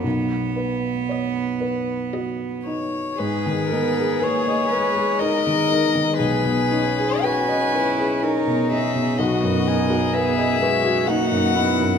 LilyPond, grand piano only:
\new Staff \with { instrumentName = "Grand piano" } { \time 3/4 \key b \major \tempo 4 = 61 b,,8 b'8 cis''8 b'8 fis'8 dis'8 | \key gis \minor gis,16 dis16 dis'16 gis'16 b'16 dis''16 b'16 gis'16 dis'16 dis16 dis'16 dis16 | b,,16 b,16 dis'16 gis'16 b'16 dis''16 b'16 gis'16 dis'16 b,16 dis'16 b,16 | b,,16 fis,16 dis'16 fis'16 b'16 dis''16 b'16 fis'16 dis'16 fis,16 dis'16 fis,16 | }